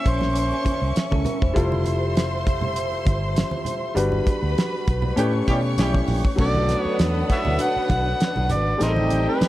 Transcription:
Already playing: C3 A#3 C#4 E4 C5 E5 C#6
0.06 A#1 C5, kick, closed hi-hat
0.21 snare, low conga
0.35 C5, closed hi-hat
0.52 muted conga
0.65 muted fingered electric bass stroke, kick, closed hi-hat, high conga
0.82 C2
0.96 snare, closed hi-hat
1.11 C#2 C#4 A4, kick, high conga
1.25 C#4 A#4, closed hi-hat, low conga
1.42 E1 E4 C5, kick
1.53 F1 F3 G3 A3 E4 F4 G4 A4 C5 C6, kick, closed hi-hat
1.72 muted conga, high conga
1.84 closed hi-hat, high conga
2.15 snare, closed hi-hat, muted conga
2.47 kick, closed hi-hat
2.61 low conga
2.76 closed hi-hat
2.92 muted conga
3.05 G1, kick, closed hi-hat, high conga
3.36 snare, closed hi-hat, muted conga
3.51 muted conga, high conga
3.65 closed hi-hat, low conga
3.95 G1 D3 G3 B3 D4 F#4 B4 B5, closed hi-hat, muted conga
4.12 muted conga, high conga
4.26 kick, closed hi-hat, high conga
4.43 D2
4.58 snare, closed hi-hat
4.87 B1, kick, closed hi-hat
5.02 low conga
5.16 A2 C#3 G3 A3 C#4 E4 G4 B4 C#5 C#6, closed hi-hat, muted conga, high conga
5.34 muted conga
5.48 B2 G3 C#4 E4 G4, kick, closed hi-hat, high conga
5.77 B1 G3 C#4 E4 G4, snare, closed hi-hat, muted conga
5.94 kick, high conga
6.08 A#1, open hi-hat, low conga
6.25 kick
6.36 B1 D3 F#3 A3 B3 C#4 D4 F#4 A4 B4 F#5, kick, crash, muted conga
6.41 D5
6.45 D4
6.55 muted conga, high conga
6.68 snare, closed hi-hat, high conga
6.81 C#5
6.85 muted fingered electric bass stroke
6.99 E2, snare, closed hi-hat
7.14 muted conga
7.30 B4 C#5 E5, kick, closed hi-hat
7.45 D2, low conga
7.59 F#5, closed hi-hat
7.76 muted fingered electric bass stroke
7.89 B1 F#5, kick, closed hi-hat, high conga
8.20 snare, closed hi-hat, muted conga
8.36 B1, muted conga, high conga
8.49 G#1 D5, closed hi-hat, low conga
8.77 A1 D#3 G3 A3 C4 D#4 G4 G#4 G5, closed hi-hat, muted conga
8.83 A#4 C5 D#5
8.87 A4
8.96 muted conga, high conga
9.10 closed hi-hat, high conga
9.29 B4
9.41 muted fingered electric bass stroke, snare, closed hi-hat, muted conga

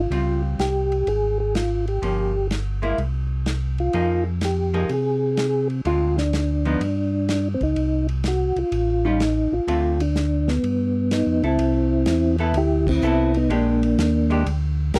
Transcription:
0.00 F4
0.10 C#2 G3 C4 F4, ride
0.59 C2 G4, snare, hi-hat pedal, ride
0.92 ride
1.06 G#1 G#4, ride
1.40 G#4
1.55 F4, snare, hi-hat pedal, ride
1.87 G4, ride
2.02 G1 F3 A#3 C#4, ride
2.51 snare, hi-hat pedal, ride
2.82 G#3 A#3 E4, ride
2.98 C2, ride
3.46 snare, hi-hat pedal, ride
3.78 F4, ride
3.93 F2 F3 A#3 D#4 G#4, ride
4.41 G4, snare, hi-hat pedal, ride
4.74 F3 A#3 D#4 G#4, ride
4.89 C3, ride
4.93 G#4
5.37 snare, hi-hat pedal, ride
5.70 ride
5.85 D2 D3 G#3 C4 F4, ride
6.18 D4, snare
6.33 snare, hi-hat pedal, ride
6.65 F3 B3 D#4, ride
6.80 G2, ride
7.29 snare, hi-hat pedal, ride
7.54 C4
7.61 C#2 D#4, kick, ride
7.76 C2, ride
8.09 ride
8.24 snare, hi-hat pedal, ride
8.28 F#4
8.56 C2 F4, ride
8.71 A1, ride
9.05 G3 C#4 D#4 F4
9.20 snare, hi-hat pedal, ride
9.52 A1 F4
9.67 D2 D3 A3 C4 F4, ride
10.00 D4, ride
10.15 snare, hi-hat pedal
10.48 B3, snare
10.63 G2, ride
11.11 B3 D#4, snare, hi-hat pedal, ride
11.26 F2
11.42 C#2 C4 E4 A4, ride
11.58 C2, ride
12.06 E2, snare, hi-hat pedal, ride
12.38 B3 E4 A4, ride
12.53 D2, ride
12.57 E4 G4
12.87 C4 E4, kick, crash
13.02 C2 B3 E4 A4, hi-hat pedal
13.34 B3 D#4, ride
13.49 A#1 G#3 A#3 D4 G4, ride
13.83 ride
13.98 D#2, snare, hi-hat pedal, ride
14.30 G#3 D4 G4, ride
14.46 D2, ride
14.94 C2 G4 A#4, snare, hi-hat pedal, ride

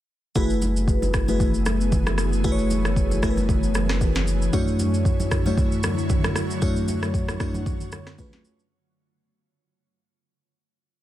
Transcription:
0.35 F#1 E3 A3 B3 E4 F#4 G#4 B4, kick, low conga, shaker
0.50 shaker
0.62 high conga, shaker
0.76 shaker
0.88 kick, shaker
1.02 high conga, shaker
1.14 kick, cross-stick, shaker
1.28 A3 E4 F#4 G#4 B4, high conga, shaker
1.40 kick, low conga, shaker
1.54 shaker
1.66 cross-stick, high conga, shaker
1.81 shaker
1.92 kick, low conga, shaker
2.07 cross-stick, high conga, shaker
2.18 cross-stick, shaker
2.33 shaker
2.44 A3 E4 F#4 G#4 B4, kick, low conga, shaker
2.52 C#5
2.59 shaker
2.71 high conga, shaker
2.85 cross-stick, shaker
2.96 kick, shaker
3.11 high conga, shaker
3.23 A3 E4 F#4 G#4 A#4, kick, cross-stick, shaker
3.30 B4
3.37 high conga, shaker
3.49 kick, low conga, shaker
3.63 shaker
3.75 cross-stick, high conga, shaker
3.89 cross-stick, snare, shaker
4.01 kick, low conga, shaker
4.15 snare, high conga, shaker
4.27 shaker
4.42 shaker
4.53 F#2 D3 F#3 A3 D4 E4 F#4 C#5, kick, low conga, shaker
4.68 shaker
4.79 high conga, shaker
4.94 shaker
5.05 kick, shaker
5.20 high conga, shaker
5.31 kick, cross-stick, shaker
5.46 F#2 A3 D4 E4 F#4 C#5, high conga, shaker
5.58 kick, low conga, shaker
5.72 shaker
5.83 cross-stick, high conga, shaker
5.98 shaker
6.10 kick, low conga, shaker
6.24 cross-stick, high conga, shaker
6.36 cross-stick, shaker
6.51 shaker
6.62 F#2 A3 D4 E4 F#4 C#5, kick, low conga, shaker
6.76 shaker
6.88 high conga, shaker
7.03 cross-stick, shaker
7.14 kick, shaker
7.28 cross-stick, high conga, shaker
7.40 F#2 A3 D4 E4 F#4 C#5, kick, cross-stick, shaker
7.54 high conga, shaker
7.66 kick, low conga, shaker
7.81 shaker
7.92 cross-stick, high conga, shaker
8.07 cross-stick, snare, shaker
8.18 A3 C#4 F4 G#4 B4, kick, low conga, shaker
8.33 snare, high conga, shaker
8.45 shaker
8.59 shaker

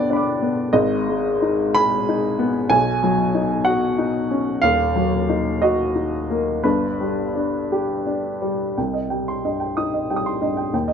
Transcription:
Already playing: G1 G2 D3 B3 D4 D5 G5
0.10 D4 D5 B5
0.16 D6
0.42 B3
0.73 G#1 G#2 D#5
1.09 G#3
1.42 D#4
1.75 G#4 B5
2.09 D#4
2.39 B3
2.70 B1 B2 G#5
3.03 F#3
3.35 D#4
3.65 F#4 F#5
3.99 D#4
4.31 C#4
4.62 D#1 D#2 F5
4.96 F#3
5.29 D#4
5.62 F#4 D#5
5.95 D#4
6.30 A#3
6.64 G1 G2 B4
7.01 G3
7.35 D4
7.72 G4
8.07 D4
8.42 G3
8.78 C2 G5
8.94 D#5
9.10 G3 G5
9.28 C6
9.45 G2 D#5
9.60 G5
9.77 D#4 D#6
9.94 D#5
10.10 G3 G5
10.16 D#6
10.26 C6
10.41 G2 D#5
10.57 G5
10.73 D#2 G5
10.88 D#5

